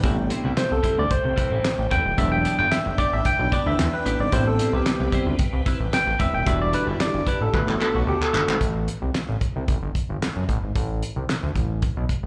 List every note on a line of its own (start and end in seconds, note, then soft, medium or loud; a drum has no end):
0.00 0.32 A1 loud
0.00 0.80 C3 medium
0.00 2.16 C3 medium
0.00 0.24 G3 medium
0.00 0.80 G3 medium
0.00 2.16 A3 medium
0.00 0.18 C4 medium
0.00 2.14 G5 medium
0.00 kick loud
0.00 closed hi-hat loud
0.04 0.80 B3 medium
0.04 0.17 E4 medium
0.04 0.16 B4 medium
0.17 muted clean electric guitar stroke soft
0.30 0.45 G3 medium
0.30 0.44 C4 medium
0.30 0.43 E4 medium
0.30 0.43 C5 medium
0.30 closed hi-hat medium
0.44 0.53 C2 medium
0.44 0.60 G3 soft
0.44 0.60 C4 medium
0.44 0.60 E4 medium
0.44 0.59 B4 medium
0.57 0.72 C5 medium
0.57 snare loud
0.57 clap medium
0.57 closed hi-hat medium
0.71 0.80 C2 medium
0.71 1.00 A4 medium
0.71 muted clean electric guitar stroke soft
0.83 1.04 G3 medium
0.83 0.97 C4 medium
0.83 0.97 E4 medium
0.83 0.97 C5 medium
0.83 kick medium
0.83 closed hi-hat medium
0.97 1.07 D2 medium
0.97 1.12 D5 medium
0.97 muted clean electric guitar stroke medium
1.10 1.94 C5 medium
1.10 muted clean electric guitar stroke soft
1.10 kick loud
1.10 closed hi-hat medium
1.24 1.34 C2 medium
1.24 muted clean electric guitar stroke soft
1.36 1.51 G3 medium
1.36 1.51 C4 medium
1.36 1.50 E4 medium
1.36 1.49 B4 medium
1.36 kick medium
1.36 closed hi-hat medium
1.51 1.60 A1 medium
1.51 1.67 G3 medium
1.51 1.67 C4 medium
1.51 1.67 E4 medium
1.51 1.66 B4 medium
1.65 snare loud
1.65 clap medium
1.65 closed hi-hat medium
1.78 1.87 A1 medium
1.78 muted clean electric guitar stroke soft
1.91 2.01 E1 medium
1.91 2.12 G3 medium
1.91 2.06 C4 medium
1.91 2.05 E4 loud
1.91 2.04 B4 medium
1.91 2.16 G5 loud
1.91 kick medium
1.91 closed hi-hat medium
2.05 2.14 D#1 medium
2.05 muted clean electric guitar stroke soft
2.17 2.46 E1 loud
2.17 4.31 E3 medium
2.17 2.54 F#3 medium
2.17 2.54 G3 medium
2.17 2.38 B3 medium
2.17 4.30 D4 medium
2.17 2.32 D4 medium
2.17 2.55 D4 medium
2.17 2.32 G4 medium
2.17 2.31 B4 medium
2.17 2.31 E5 loud
2.17 6.43 G5 loud
2.17 kick loud
2.17 closed hi-hat loud
2.32 2.57 G5 loud
2.32 muted clean electric guitar stroke medium
2.45 2.59 B3 medium
2.45 2.59 D4 medium
2.45 2.58 G4 medium
2.45 2.58 D5 medium
2.45 closed hi-hat medium
2.59 2.68 G1 loud
2.59 2.75 B3 medium
2.59 2.75 D4 medium
2.59 2.74 G4 medium
2.59 2.74 B4 medium
2.59 2.72 G5 loud
2.71 2.99 E5 medium
2.71 snare loud
2.71 clap medium
2.71 closed hi-hat medium
2.86 2.95 G1 medium
2.86 muted clean electric guitar stroke medium
2.98 3.19 B3 medium
2.98 3.13 D4 medium
2.98 3.12 G4 medium
2.98 3.13 D5 loud
2.98 3.12 D5 medium
2.98 kick medium
2.98 closed hi-hat medium
3.13 3.21 A1 loud
3.13 3.26 E5 medium
3.25 3.53 G5 loud
3.25 muted clean electric guitar stroke soft
3.25 kick loud
3.25 closed hi-hat medium
3.39 3.48 B1 medium
3.39 muted clean electric guitar stroke soft
3.52 3.67 B3 medium
3.52 3.66 D4 medium
3.52 3.66 G4 medium
3.52 3.65 B4 medium
3.52 3.66 D5 medium
3.52 kick medium
3.52 closed hi-hat medium
3.66 3.75 D2 medium
3.66 3.78 B3 soft
3.66 3.79 D4 medium
3.66 3.79 G4 medium
3.66 3.79 B4 medium
3.66 3.94 E5 loud
3.79 3.88 E2 loud
3.79 muted clean electric guitar stroke soft
3.79 snare loud
3.79 clap loud
3.79 closed hi-hat loud
3.94 4.21 B4 medium
3.94 muted clean electric guitar stroke soft
4.06 4.15 A1 medium
4.06 4.26 B3 medium
4.06 4.20 D4 medium
4.06 4.20 G4 medium
4.06 4.19 B4 medium
4.06 closed hi-hat medium
4.19 4.28 G#1 medium
4.19 4.33 D5 medium
4.19 muted clean electric guitar stroke medium
4.32 4.60 A1 loud
4.32 6.45 C3 medium
4.32 5.09 G3 medium
4.32 4.53 G3 medium
4.32 5.09 B3 medium
4.32 4.47 C4 medium
4.32 5.09 C4 medium
4.32 4.46 E4 medium
4.32 6.45 B4 medium
4.32 4.46 B4 medium
4.32 4.47 C5 loud
4.32 kick loud
4.32 closed hi-hat loud
4.47 4.72 A4 medium
4.47 muted clean electric guitar stroke soft
4.59 4.74 G3 medium
4.59 4.74 C4 medium
4.59 4.73 E4 medium
4.59 4.73 C5 medium
4.59 closed hi-hat medium
4.73 4.82 C2 medium
4.73 4.90 G3 medium
4.73 4.89 C4 soft
4.73 4.89 E4 medium
4.73 5.24 G4 medium
4.73 4.88 B4 medium
4.86 snare loud
4.86 clap medium
4.86 closed hi-hat medium
4.99 5.08 C2 loud
4.99 muted clean electric guitar stroke medium
5.12 5.33 G3 medium
5.12 5.37 G3 medium
5.12 5.37 B3 soft
5.12 5.27 C4 medium
5.12 5.37 C4 medium
5.12 5.26 E4 medium
5.12 5.27 C5 medium
5.12 kick medium
5.12 closed hi-hat medium
5.26 5.35 D2 loud
5.26 muted clean electric guitar stroke medium
5.39 kick loud
5.39 closed hi-hat medium
5.53 5.62 C2 medium
5.53 muted clean electric guitar stroke soft
5.66 5.87 G3 medium
5.66 5.80 C4 medium
5.66 5.79 E4 medium
5.66 5.79 B4 medium
5.66 kick medium
5.66 closed hi-hat medium
5.80 5.89 A1 medium
5.80 muted clean electric guitar stroke soft
5.93 6.21 G5 loud
5.93 muted clean electric guitar stroke soft
5.93 snare loud
5.93 clap loud
5.93 closed hi-hat loud
6.07 6.15 A1 medium
6.07 muted clean electric guitar stroke soft
6.19 6.30 E1 medium
6.19 6.40 G3 medium
6.19 6.34 C4 loud
6.19 6.34 E4 medium
6.19 6.33 B4 loud
6.19 6.35 E5 loud
6.19 kick loud
6.19 closed hi-hat medium
6.33 6.42 D#1 medium
6.33 6.47 G5 medium
6.33 muted clean electric guitar stroke soft
6.46 6.75 E1 loud
6.46 7.52 D3 medium
6.46 7.23 G3 medium
6.46 7.52 G3 medium
6.46 6.67 G3 medium
6.46 7.23 D4 medium
6.46 6.61 D4 medium
6.46 7.52 E4 medium
6.46 6.60 E4 medium
6.46 7.23 F#4 medium
6.46 6.59 B4 medium
6.46 6.61 E5 loud
6.46 kick loud
6.46 closed hi-hat loud
6.61 6.73 D5 loud
6.61 muted clean electric guitar stroke soft
6.73 6.88 G3 medium
6.73 6.87 D4 medium
6.73 6.87 E4 medium
6.73 6.86 B4 loud
6.73 6.87 D5 medium
6.73 closed hi-hat medium
6.87 6.96 G1 loud
6.87 7.04 G3 medium
6.87 7.03 D4 medium
6.87 7.03 E4 medium
6.87 7.03 B4 medium
7.00 7.26 D5 medium
7.00 snare loud
7.00 clap medium
7.00 closed hi-hat medium
7.14 7.23 G1 medium
7.14 muted clean electric guitar stroke medium
7.27 7.47 G3 medium
7.27 7.41 D4 loud
7.27 7.40 E4 medium
7.27 7.42 B4 medium
7.27 7.41 D5 medium
7.27 kick medium
7.27 closed hi-hat medium
7.41 7.49 A1 medium
7.41 7.55 A4 medium
7.41 muted clean electric guitar stroke soft
7.53 7.63 G1 loud
7.53 8.60 B2 medium
7.53 7.90 A3 medium
7.53 8.60 A3 medium
7.53 7.90 B3 soft
7.53 8.60 F#4 medium
7.53 7.90 F#4 medium
7.53 7.66 B4 medium
7.53 kick loud
7.53 clap medium
7.67 7.76 A1 medium
7.67 muted clean electric guitar stroke medium
7.67 clap medium
7.80 7.95 A3 medium
7.80 7.94 D4 medium
7.80 7.94 F#4 medium
7.80 7.96 A4 medium
7.80 7.93 B4 medium
7.80 clap medium
7.94 8.03 B1 medium
7.94 8.06 A3 soft
7.94 8.06 D4 medium
7.94 8.07 F#4 medium
7.94 8.01 F#4 medium
7.94 8.07 B4 medium
8.07 8.17 D2 loud
8.07 8.21 G4 medium
8.21 8.59 A4 medium
8.21 muted clean electric guitar stroke medium
8.21 clap medium
8.33 8.44 G1 loud
8.33 8.54 A3 medium
8.33 8.47 D4 medium
8.33 8.46 F#4 loud
8.33 8.46 B4 loud
8.33 clap loud
8.47 8.57 G#1 loud
8.47 muted clean electric guitar stroke soft
8.47 clap loud
8.61 8.89 A1 loud
8.61 kick loud
8.61 closed hi-hat medium
8.88 closed hi-hat medium
9.02 9.10 C2 medium
9.15 snare loud
9.15 clap medium
9.15 closed hi-hat medium
9.29 9.37 A1 medium
9.41 kick medium
9.41 closed hi-hat medium
9.56 9.64 C2 medium
9.68 9.78 A1 loud
9.68 kick loud
9.68 closed hi-hat medium
9.82 9.91 G1 medium
9.95 kick medium
9.95 closed hi-hat medium
10.09 10.18 G1 medium
10.22 snare loud
10.22 clap medium
10.22 closed hi-hat medium
10.36 10.45 F#1 medium
10.49 10.58 A1 loud
10.49 kick medium
10.49 closed hi-hat medium
10.63 10.71 G#1 medium
10.75 11.03 A1 loud
10.75 kick loud
10.75 closed hi-hat medium
11.03 closed hi-hat medium
11.16 11.25 C2 medium
11.29 snare loud
11.29 clap medium
11.29 closed hi-hat medium
11.43 11.52 D2 medium
11.55 11.83 A1 medium
11.55 kick medium
11.55 closed hi-hat medium
11.82 kick loud
11.82 closed hi-hat medium
11.97 12.05 B1 medium
12.09 kick medium
12.09 closed hi-hat medium
12.23 12.26 A1 medium